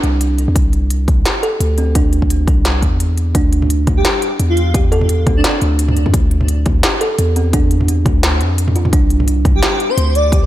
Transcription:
0.03 0.47 C2 medium
0.03 closed hi-hat soft
0.21 closed hi-hat medium
0.38 closed hi-hat soft
0.48 0.55 E2 loud
0.56 1.07 C2 medium
0.56 kick loud
0.56 closed hi-hat medium
0.73 closed hi-hat soft
0.90 closed hi-hat medium
1.08 1.24 C2 loud
1.08 kick loud
1.08 closed hi-hat soft
1.25 1.42 G4 medium
1.25 snare loud
1.25 closed hi-hat medium
1.43 1.60 A4 loud
1.43 closed hi-hat soft
1.60 2.47 D2 loud
1.60 closed hi-hat medium
1.78 1.95 C4 medium
1.78 closed hi-hat soft
1.95 2.12 D4 medium
1.95 kick loud
1.95 closed hi-hat medium
2.13 closed hi-hat soft
2.22 kick medium
2.30 closed hi-hat medium
2.48 2.84 C2 loud
2.48 kick loud
2.48 closed hi-hat soft
2.65 snare loud
2.65 closed hi-hat medium
2.82 3.34 E2 medium
2.82 kick medium
2.82 closed hi-hat soft
3.00 closed hi-hat medium
3.18 closed hi-hat soft
3.35 3.86 D2 medium
3.35 3.52 D4 medium
3.35 kick loud
3.35 closed hi-hat medium
3.53 closed hi-hat soft
3.62 mid tom medium
3.70 closed hi-hat medium
3.87 4.03 D2 loud
3.87 kick loud
3.87 closed hi-hat soft
3.87 mid tom medium
3.97 4.32 G4 medium
4.05 snare loud
4.05 closed hi-hat medium
4.22 closed hi-hat soft
4.40 5.26 E2 loud
4.40 closed hi-hat medium
4.50 4.70 F4 medium
4.57 closed hi-hat soft
4.74 4.91 G4 medium
4.74 kick loud
4.74 closed hi-hat medium
4.92 5.09 A4 loud
4.92 closed hi-hat soft
5.01 mid tom medium
5.09 closed hi-hat medium
5.27 5.43 D2 loud
5.27 5.43 C4 medium
5.27 kick loud
5.27 closed hi-hat soft
5.27 mid tom soft
5.37 5.42 D4 medium
5.44 5.61 D4 medium
5.44 5.51 D4 medium
5.44 snare loud
5.44 closed hi-hat medium
5.61 6.05 D2 medium
5.61 closed hi-hat soft
5.79 closed hi-hat medium
5.88 mid tom medium
5.97 closed hi-hat soft
6.06 6.13 F2 loud
6.06 mid tom medium
6.14 6.65 D2 medium
6.14 kick loud
6.14 closed hi-hat medium
6.31 closed hi-hat soft
6.41 mid tom medium
6.48 closed hi-hat medium
6.66 6.82 D2 loud
6.66 kick loud
6.66 closed hi-hat soft
6.66 mid tom soft
6.83 7.01 G4 medium
6.83 snare loud
6.83 closed hi-hat medium
7.01 7.18 A4 loud
7.01 closed hi-hat soft
7.19 8.05 E2 loud
7.19 closed hi-hat medium
7.36 7.53 C4 medium
7.36 closed hi-hat soft
7.53 7.70 D4 medium
7.53 kick loud
7.53 closed hi-hat medium
7.71 closed hi-hat soft
7.81 mid tom soft
7.88 closed hi-hat medium
8.06 8.42 D2 loud
8.06 kick loud
8.06 closed hi-hat soft
8.06 mid tom soft
8.23 snare loud
8.23 closed hi-hat medium
8.41 8.92 F2 medium
8.41 closed hi-hat soft
8.58 closed hi-hat medium
8.68 mid tom medium
8.76 8.92 F4 medium
8.76 closed hi-hat soft
8.85 mid tom medium
8.93 9.44 C2 loud
8.93 9.10 D4 medium
8.93 kick loud
8.93 closed hi-hat medium
9.10 closed hi-hat soft
9.20 mid tom soft
9.28 closed hi-hat medium
9.45 9.61 C2 loud
9.45 kick loud
9.45 closed hi-hat soft
9.45 mid tom soft
9.55 9.89 G4 medium
9.63 snare loud
9.63 closed hi-hat medium
9.80 closed hi-hat soft
9.89 10.10 C5 medium
9.97 10.46 D2 loud
9.97 closed hi-hat medium
10.15 10.36 D5 medium
10.15 closed hi-hat soft
10.32 10.46 G4 medium
10.32 kick loud
10.32 closed hi-hat medium

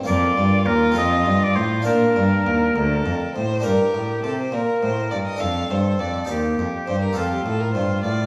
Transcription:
0.03 0.36 F2 medium
0.03 0.34 A#3 medium
0.03 0.92 F4 medium
0.03 1.86 F4 medium
0.03 0.93 A#4 medium
0.03 0.68 D5 loud
0.08 0.34 F2 medium
0.37 0.68 G2 medium
0.37 0.64 G2 medium
0.66 0.93 D#2 medium
0.66 0.96 D#2 medium
0.66 0.96 A#4 medium
0.92 1.23 C4 medium
0.92 1.82 F4 medium
0.92 1.82 A4 medium
0.96 1.27 F2 medium
0.96 1.23 F2 medium
0.96 1.45 D#5 loud
1.26 1.58 G2 medium
1.26 1.53 G2 medium
1.44 1.57 D5 medium
1.56 1.83 A2 medium
1.56 1.88 A2 medium
1.56 1.85 C5 medium
1.82 3.59 D4 medium
1.82 3.60 F4 medium
1.82 3.61 A#4 medium
1.82 3.32 A#4 medium
1.86 2.16 A#2 medium
1.86 2.13 A#2 medium
1.86 2.74 D4 medium
2.16 2.43 G2 medium
2.16 2.45 G2 medium
2.47 2.73 D#2 medium
2.47 2.75 D#2 medium
2.76 3.05 D2 medium
2.76 3.02 D2 medium
2.76 3.32 A4 medium
3.06 3.14 F2 medium
3.06 3.32 F2 medium
3.35 3.64 A2 medium
3.35 3.62 A2 medium
3.35 3.65 C5 medium
3.60 3.91 D4 soft
3.60 5.36 G4 soft
3.60 5.36 A#4 soft
3.60 4.23 A#4 medium
3.64 3.92 G2 soft
3.64 3.73 G2 medium
3.64 4.49 G4 medium
3.94 4.23 A2 soft
3.94 4.21 A2 soft
4.23 4.52 C3 soft
4.23 4.51 C3 soft
4.23 4.38 A4 medium
4.39 4.55 C5 medium
4.52 4.79 A#2 soft
4.52 4.61 A#2 medium
4.52 4.82 A#4 medium
4.52 5.40 A#4 medium
4.83 5.11 A2 soft
4.83 5.09 A2 soft
4.83 5.10 C5 medium
5.11 5.38 G2 soft
5.11 5.20 G2 soft
5.11 5.17 D5 medium
5.26 5.42 D#5 medium
5.36 6.24 D4 soft
5.36 6.25 A4 soft
5.40 5.67 F2 soft
5.40 5.69 F2 medium
5.40 6.27 A4 medium
5.40 5.73 F5 medium
5.70 5.99 G2 medium
5.70 5.97 G2 soft
5.70 6.01 C5 medium
5.99 6.26 F2 soft
5.99 6.29 F2 medium
5.99 6.29 D5 medium
6.25 7.12 D#4 soft
6.25 7.12 G4 soft
6.25 7.13 C5 soft
6.29 6.55 D#2 soft
6.29 6.58 D#2 medium
6.29 7.15 G4 medium
6.58 6.66 F2 medium
6.58 6.85 F2 soft
6.86 7.15 G2 medium
6.86 7.14 G2 soft
6.86 7.00 C5 medium
7.01 7.17 A#4 medium
7.13 7.44 F2 medium
7.13 7.43 F2 soft
7.13 7.71 C4 soft
7.13 8.26 F4 soft
7.13 8.26 A4 soft
7.13 7.31 A4 medium
7.17 8.26 F4 medium
7.31 7.45 G4 medium
7.45 7.75 A2 medium
7.45 7.72 A2 soft
7.45 7.61 A4 medium
7.60 7.73 A#4 medium
7.73 8.04 G2 medium
7.73 8.01 G2 soft
7.73 8.02 C5 medium
8.02 8.26 A2 medium
8.02 8.26 A2 soft
8.02 8.26 D5 medium

